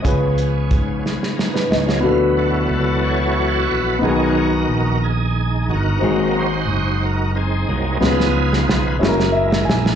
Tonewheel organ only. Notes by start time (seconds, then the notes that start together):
Already playing: D#5
0.04 F3 B3 C#4 G#4
1.36 A#4 A#5
1.53 B4
1.69 C#5
1.87 F5
2.03 E3 F#3 B3
2.37 F#4 A4
3.03 F#4 A4 C#5
3.71 B4
4.02 D#3 G#3 C#4 D#4 F#4 A#4
5.01 D#4 G#4
5.70 D#4 F#4 A#4
6.02 F#3 A#3 C4
6.36 D#4 F#4 C5
7.05 A#4
7.35 C4 D#4 G#4
7.69 F#3 A#3 C4
8.00 F3 B3 D#4 F4 G#4 B4
9.01 G#3 A#3 E4